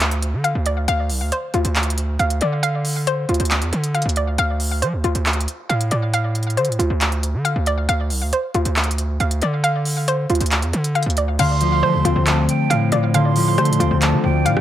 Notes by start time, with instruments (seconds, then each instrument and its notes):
Already playing: 808-style bass D2, synth pluck F4 C5 D5 F5
0.00 clap, closed hi-hat
0.11 closed hi-hat
0.23 closed hi-hat
0.33 808-style bass D3
0.44 synth pluck F5, closed hi-hat
0.55 808-style bass D2
0.66 synth pluck D5, closed hi-hat
0.88 808-style bass D2, synth pluck F5, closed hi-hat
1.10 808-style bass C2, open hi-hat
1.21 808-style bass D2
1.32 synth pluck C5, closed hi-hat
1.54 808-style bass D2, synth pluck F4, closed hi-hat
1.65 808-style bass D2, closed hi-hat
1.76 clap, closed hi-hat
1.83 closed hi-hat
1.90 closed hi-hat
1.98 closed hi-hat
2.19 808-style bass D2, synth pluck F5, closed hi-hat
2.30 closed hi-hat
2.41 808-style bass D3, synth pluck D5, closed hi-hat
2.63 synth pluck F5, closed hi-hat
2.85 open hi-hat
3.07 synth pluck C5, closed hi-hat
3.29 808-style bass D2, synth pluck F4, closed hi-hat
3.34 closed hi-hat
3.40 808-style bass D2, closed hi-hat
3.45 closed hi-hat
3.51 clap, closed hi-hat
3.62 808-style bass E2, closed hi-hat
3.73 808-style bass D3, closed hi-hat
3.84 closed hi-hat
3.94 synth pluck F5, closed hi-hat
4.02 808-style bass D2, closed hi-hat
4.09 closed hi-hat
4.16 synth pluck D5, closed hi-hat
4.38 808-style bass D2, synth pluck F5, closed hi-hat
4.60 open hi-hat
4.82 808-style bass F3, synth pluck C5, closed hi-hat
4.93 808-style bass D2
5.04 808-style bass D2, synth pluck F4, closed hi-hat
5.15 808-style bass D2, closed hi-hat
5.26 clap, closed hi-hat
5.33 closed hi-hat
5.41 closed hi-hat
5.48 closed hi-hat
5.69 808-style bass A2, synth pluck F5, closed hi-hat
5.81 closed hi-hat
5.91 808-style bass A2, synth pluck D5, closed hi-hat
6.14 synth pluck F5, closed hi-hat
6.35 closed hi-hat, open hi-hat
6.43 closed hi-hat
6.50 closed hi-hat
6.57 808-style bass D3, synth pluck C5, closed hi-hat
6.65 808-style bass A2, closed hi-hat
6.72 closed hi-hat
6.79 808-style bass D2, synth pluck F4, closed hi-hat
6.90 808-style bass D2
7.01 clap, closed hi-hat
7.12 closed hi-hat
7.23 closed hi-hat
7.34 808-style bass D3
7.45 synth pluck F5, closed hi-hat
7.56 808-style bass D2
7.66 synth pluck D5, closed hi-hat
7.89 808-style bass D2, synth pluck F5, closed hi-hat
8.10 808-style bass C2, open hi-hat
8.22 808-style bass D2
8.33 synth pluck C5, closed hi-hat
8.54 808-style bass D2, synth pluck F4, closed hi-hat
8.65 808-style bass D2, closed hi-hat
8.76 clap, closed hi-hat
8.84 closed hi-hat
8.91 closed hi-hat
8.98 closed hi-hat
9.20 808-style bass D2, synth pluck F5, closed hi-hat
9.31 closed hi-hat
9.42 808-style bass D3, synth pluck D5, closed hi-hat
9.64 synth pluck F5, closed hi-hat
9.85 open hi-hat
10.08 synth pluck C5, closed hi-hat
10.30 808-style bass D2, synth pluck F4, closed hi-hat
10.35 closed hi-hat
10.41 808-style bass D2, closed hi-hat
10.46 closed hi-hat
10.52 clap, closed hi-hat
10.62 808-style bass E2, closed hi-hat
10.73 808-style bass D3, closed hi-hat
10.84 closed hi-hat
10.95 synth pluck F5, closed hi-hat
11.03 808-style bass D2, closed hi-hat
11.10 closed hi-hat
11.17 synth pluck D5, closed hi-hat
11.39 808-style bass D2, harp D3, ambient pad D3 A3 F4 C5, synth pluck F5, flute C6, closed hi-hat, crash
11.61 harp F3, closed hi-hat
11.83 808-style bass F3, harp A3, synth pluck C5
11.94 808-style bass D2
12.05 808-style bass D2, harp C4, synth pluck F4, closed hi-hat
12.16 808-style bass D2
12.27 flute A5, clap, closed hi-hat
12.49 flute G5, closed hi-hat
12.70 808-style bass A2, synth pluck F5, closed hi-hat
12.92 808-style bass A2, synth pluck D5, flute F5, closed hi-hat
13.14 harp D3, ambient pad D5, synth pluck F5, flute C6, closed hi-hat
13.36 harp F3, open hi-hat
13.58 808-style bass D3, harp A3, synth pluck C5, cross-stick, closed hi-hat
13.65 808-style bass A2, closed hi-hat
13.73 closed hi-hat
13.80 808-style bass D2, harp C4, synth pluck F4, closed hi-hat
13.91 808-style bass D2
14.02 flute A5, clap, closed hi-hat
14.13 808-style bass D3
14.24 808-style bass D2, flute G5
14.45 808-style bass A2, synth pluck F5, closed hi-hat
14.57 808-style bass D2, cross-stick